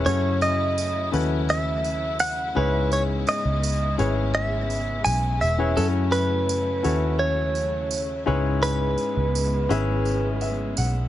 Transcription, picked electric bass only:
0, 0, Header, 1, 2, 480
1, 0, Start_track
1, 0, Key_signature, 4, "minor"
1, 0, Tempo, 714116
1, 42, Time_signature, 4, 2, 24, 8
1, 7449, End_track
2, 0, Start_track
2, 0, Title_t, "Picked electric bass"
2, 0, Program_c, 0, 34
2, 43, Note_on_c, 0, 42, 87
2, 736, Note_off_c, 0, 42, 0
2, 764, Note_on_c, 0, 39, 98
2, 1696, Note_off_c, 0, 39, 0
2, 1724, Note_on_c, 0, 37, 91
2, 2176, Note_off_c, 0, 37, 0
2, 2321, Note_on_c, 0, 37, 90
2, 2656, Note_off_c, 0, 37, 0
2, 2685, Note_on_c, 0, 32, 102
2, 3377, Note_off_c, 0, 32, 0
2, 3403, Note_on_c, 0, 35, 97
2, 3626, Note_off_c, 0, 35, 0
2, 3642, Note_on_c, 0, 28, 87
2, 3865, Note_off_c, 0, 28, 0
2, 3885, Note_on_c, 0, 42, 103
2, 4577, Note_off_c, 0, 42, 0
2, 4606, Note_on_c, 0, 39, 96
2, 5537, Note_off_c, 0, 39, 0
2, 5563, Note_on_c, 0, 37, 92
2, 6016, Note_off_c, 0, 37, 0
2, 6163, Note_on_c, 0, 37, 86
2, 6497, Note_off_c, 0, 37, 0
2, 6523, Note_on_c, 0, 32, 97
2, 7215, Note_off_c, 0, 32, 0
2, 7248, Note_on_c, 0, 35, 95
2, 7449, Note_off_c, 0, 35, 0
2, 7449, End_track
0, 0, End_of_file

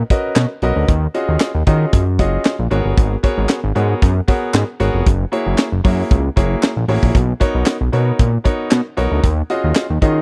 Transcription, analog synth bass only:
0, 0, Header, 1, 2, 480
1, 0, Start_track
1, 0, Key_signature, -6, "minor"
1, 0, Tempo, 521739
1, 816, Time_signature, 4, 2, 24, 8
1, 9401, End_track
2, 0, Start_track
2, 0, Title_t, "Analog synth bass"
2, 0, Program_c, 0, 38
2, 331, Note_on_c, 0, 47, 102
2, 424, Note_off_c, 0, 47, 0
2, 574, Note_on_c, 0, 35, 85
2, 666, Note_off_c, 0, 35, 0
2, 702, Note_on_c, 0, 38, 79
2, 783, Note_off_c, 0, 38, 0
2, 815, Note_on_c, 0, 39, 112
2, 987, Note_off_c, 0, 39, 0
2, 1182, Note_on_c, 0, 39, 94
2, 1263, Note_off_c, 0, 39, 0
2, 1422, Note_on_c, 0, 39, 88
2, 1503, Note_off_c, 0, 39, 0
2, 1536, Note_on_c, 0, 51, 107
2, 1708, Note_off_c, 0, 51, 0
2, 1778, Note_on_c, 0, 42, 101
2, 2017, Note_on_c, 0, 30, 101
2, 2031, Note_off_c, 0, 42, 0
2, 2189, Note_off_c, 0, 30, 0
2, 2384, Note_on_c, 0, 34, 86
2, 2464, Note_off_c, 0, 34, 0
2, 2498, Note_on_c, 0, 32, 102
2, 2588, Note_off_c, 0, 32, 0
2, 2625, Note_on_c, 0, 31, 76
2, 2705, Note_off_c, 0, 31, 0
2, 2737, Note_on_c, 0, 32, 108
2, 2909, Note_off_c, 0, 32, 0
2, 3107, Note_on_c, 0, 32, 109
2, 3187, Note_off_c, 0, 32, 0
2, 3346, Note_on_c, 0, 32, 106
2, 3426, Note_off_c, 0, 32, 0
2, 3459, Note_on_c, 0, 44, 102
2, 3630, Note_off_c, 0, 44, 0
2, 3702, Note_on_c, 0, 42, 102
2, 3872, Note_off_c, 0, 42, 0
2, 4178, Note_on_c, 0, 44, 106
2, 4268, Note_off_c, 0, 44, 0
2, 4419, Note_on_c, 0, 32, 92
2, 4509, Note_off_c, 0, 32, 0
2, 4545, Note_on_c, 0, 29, 83
2, 4625, Note_off_c, 0, 29, 0
2, 4661, Note_on_c, 0, 30, 114
2, 4831, Note_off_c, 0, 30, 0
2, 5029, Note_on_c, 0, 30, 108
2, 5107, Note_off_c, 0, 30, 0
2, 5266, Note_on_c, 0, 30, 105
2, 5346, Note_off_c, 0, 30, 0
2, 5381, Note_on_c, 0, 42, 90
2, 5551, Note_off_c, 0, 42, 0
2, 5623, Note_on_c, 0, 37, 101
2, 5792, Note_off_c, 0, 37, 0
2, 5861, Note_on_c, 0, 30, 90
2, 6031, Note_off_c, 0, 30, 0
2, 6225, Note_on_c, 0, 34, 92
2, 6305, Note_off_c, 0, 34, 0
2, 6332, Note_on_c, 0, 33, 98
2, 6424, Note_off_c, 0, 33, 0
2, 6468, Note_on_c, 0, 34, 79
2, 6547, Note_off_c, 0, 34, 0
2, 6576, Note_on_c, 0, 35, 114
2, 6748, Note_off_c, 0, 35, 0
2, 6944, Note_on_c, 0, 35, 100
2, 7025, Note_off_c, 0, 35, 0
2, 7185, Note_on_c, 0, 35, 103
2, 7265, Note_off_c, 0, 35, 0
2, 7298, Note_on_c, 0, 47, 102
2, 7469, Note_off_c, 0, 47, 0
2, 7540, Note_on_c, 0, 46, 96
2, 7710, Note_off_c, 0, 46, 0
2, 8020, Note_on_c, 0, 47, 109
2, 8110, Note_off_c, 0, 47, 0
2, 8259, Note_on_c, 0, 35, 83
2, 8349, Note_off_c, 0, 35, 0
2, 8386, Note_on_c, 0, 38, 86
2, 8466, Note_off_c, 0, 38, 0
2, 8499, Note_on_c, 0, 39, 114
2, 8670, Note_off_c, 0, 39, 0
2, 8869, Note_on_c, 0, 39, 104
2, 8948, Note_off_c, 0, 39, 0
2, 9109, Note_on_c, 0, 39, 88
2, 9188, Note_off_c, 0, 39, 0
2, 9220, Note_on_c, 0, 51, 97
2, 9390, Note_off_c, 0, 51, 0
2, 9401, End_track
0, 0, End_of_file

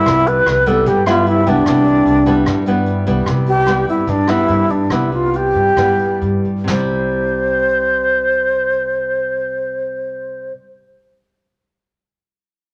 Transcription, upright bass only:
0, 0, Header, 1, 2, 480
1, 0, Start_track
1, 0, Key_signature, 0, "major"
1, 0, Tempo, 401338
1, 71, Time_signature, 4, 2, 24, 8
1, 4871, Tempo, 423131
1, 6791, Tempo, 469484
1, 13912, End_track
2, 0, Start_track
2, 0, Title_t, "Upright bass"
2, 0, Program_c, 0, 32
2, 68, Note_on_c, 0, 36, 86
2, 515, Note_off_c, 0, 36, 0
2, 551, Note_on_c, 0, 36, 85
2, 997, Note_off_c, 0, 36, 0
2, 1030, Note_on_c, 0, 43, 78
2, 1701, Note_off_c, 0, 43, 0
2, 1748, Note_on_c, 0, 36, 81
2, 1972, Note_off_c, 0, 36, 0
2, 1985, Note_on_c, 0, 36, 82
2, 2433, Note_off_c, 0, 36, 0
2, 2462, Note_on_c, 0, 36, 83
2, 2911, Note_off_c, 0, 36, 0
2, 2942, Note_on_c, 0, 43, 81
2, 3617, Note_off_c, 0, 43, 0
2, 3664, Note_on_c, 0, 36, 74
2, 3888, Note_off_c, 0, 36, 0
2, 3901, Note_on_c, 0, 36, 86
2, 4579, Note_off_c, 0, 36, 0
2, 4625, Note_on_c, 0, 43, 63
2, 4853, Note_off_c, 0, 43, 0
2, 4868, Note_on_c, 0, 43, 74
2, 5086, Note_off_c, 0, 43, 0
2, 5335, Note_on_c, 0, 43, 78
2, 5778, Note_off_c, 0, 43, 0
2, 5810, Note_on_c, 0, 36, 86
2, 6496, Note_off_c, 0, 36, 0
2, 6538, Note_on_c, 0, 43, 67
2, 6772, Note_off_c, 0, 43, 0
2, 6788, Note_on_c, 0, 43, 63
2, 7002, Note_off_c, 0, 43, 0
2, 7249, Note_on_c, 0, 43, 75
2, 7691, Note_off_c, 0, 43, 0
2, 7720, Note_on_c, 0, 36, 70
2, 11641, Note_off_c, 0, 36, 0
2, 13912, End_track
0, 0, End_of_file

